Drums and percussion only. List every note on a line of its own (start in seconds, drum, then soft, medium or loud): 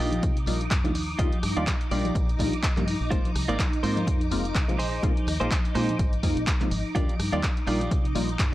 0.12 closed hi-hat soft
0.12 tambourine soft
0.12 high conga medium
0.22 kick loud
0.22 closed hi-hat medium
0.22 tambourine medium
0.37 closed hi-hat soft
0.46 open hi-hat loud
0.46 tambourine medium
0.46 high conga medium
0.59 closed hi-hat soft
0.59 tambourine soft
0.71 kick loud
0.71 clap loud
0.71 closed hi-hat medium
0.84 closed hi-hat soft
0.84 high conga medium
0.84 low conga medium
0.94 open hi-hat medium
0.94 tambourine medium
1.08 tambourine soft
1.18 kick loud
1.18 closed hi-hat medium
1.18 tambourine medium
1.32 closed hi-hat soft
1.32 high conga medium
1.43 cross-stick medium
1.43 open hi-hat loud
1.43 tambourine medium
1.57 closed hi-hat soft
1.57 tambourine soft
1.66 kick loud
1.66 clap loud
1.66 closed hi-hat medium
1.66 tambourine medium
1.66 high conga medium
1.81 closed hi-hat soft
1.81 tambourine soft
1.91 open hi-hat medium
1.91 tambourine medium
2.05 closed hi-hat soft
2.05 tambourine soft
2.05 high conga medium
2.15 kick loud
2.15 closed hi-hat medium
2.15 tambourine medium
2.29 closed hi-hat soft
2.38 kick medium
2.38 open hi-hat loud
2.38 tambourine medium
2.38 high conga medium
2.52 closed hi-hat soft
2.52 tambourine soft
2.63 kick loud
2.63 clap loud
2.63 closed hi-hat medium
2.77 clap soft
2.77 closed hi-hat soft
2.77 high conga medium
2.77 low conga medium
2.87 open hi-hat medium
2.87 tambourine medium
3.01 tambourine soft
3.11 kick loud
3.11 closed hi-hat medium
3.11 tambourine medium
3.25 closed hi-hat soft
3.25 high conga medium
3.35 cross-stick medium
3.35 open hi-hat loud
3.35 tambourine medium
3.49 closed hi-hat soft
3.49 tambourine soft
3.59 kick loud
3.59 clap loud
3.59 closed hi-hat medium
3.59 tambourine medium
3.59 high conga medium
3.72 closed hi-hat soft
3.72 tambourine soft
3.83 open hi-hat medium
3.83 tambourine medium
3.97 closed hi-hat soft
3.97 tambourine soft
3.97 high conga loud
4.07 kick loud
4.07 closed hi-hat medium
4.07 tambourine soft
4.21 closed hi-hat soft
4.31 open hi-hat loud
4.31 tambourine medium
4.31 high conga medium
4.44 closed hi-hat soft
4.44 tambourine soft
4.55 kick loud
4.55 clap loud
4.55 closed hi-hat medium
4.69 closed hi-hat soft
4.69 high conga loud
4.69 low conga medium
4.79 open hi-hat medium
4.79 tambourine medium
4.92 tambourine soft
5.03 kick loud
5.03 closed hi-hat medium
5.03 tambourine soft
5.16 closed hi-hat soft
5.16 high conga medium
5.27 cross-stick medium
5.27 open hi-hat loud
5.27 tambourine medium
5.41 closed hi-hat soft
5.51 kick loud
5.51 clap loud
5.51 closed hi-hat medium
5.51 tambourine soft
5.51 high conga medium
5.64 closed hi-hat soft
5.64 tambourine soft
5.75 cross-stick medium
5.75 open hi-hat medium
5.75 tambourine medium
5.88 closed hi-hat soft
5.88 tambourine soft
5.88 high conga medium
5.99 kick loud
5.99 closed hi-hat medium
5.99 tambourine soft
6.13 closed hi-hat soft
6.23 kick medium
6.23 open hi-hat loud
6.23 tambourine medium
6.23 high conga medium
6.37 closed hi-hat soft
6.37 tambourine soft
6.47 kick loud
6.47 clap loud
6.47 closed hi-hat medium
6.60 clap soft
6.60 closed hi-hat soft
6.60 high conga loud
6.60 low conga medium
6.71 open hi-hat medium
6.71 tambourine medium
6.85 tambourine soft
6.95 kick loud
6.95 closed hi-hat medium
6.95 tambourine soft
7.09 closed hi-hat soft
7.09 high conga medium
7.19 cross-stick medium
7.19 open hi-hat loud
7.19 tambourine medium
7.33 closed hi-hat soft
7.33 tambourine soft
7.43 kick loud
7.43 clap loud
7.43 closed hi-hat medium
7.43 tambourine soft
7.43 high conga medium
7.57 closed hi-hat soft
7.57 tambourine soft
7.67 cross-stick medium
7.67 open hi-hat medium
7.67 tambourine medium
7.80 closed hi-hat soft
7.80 tambourine soft
7.80 high conga medium
7.91 kick loud
7.91 closed hi-hat medium
7.91 tambourine soft
8.05 closed hi-hat soft
8.15 open hi-hat loud
8.15 tambourine medium
8.15 high conga medium
8.29 closed hi-hat soft
8.29 tambourine soft
8.39 kick loud
8.39 clap loud
8.39 closed hi-hat medium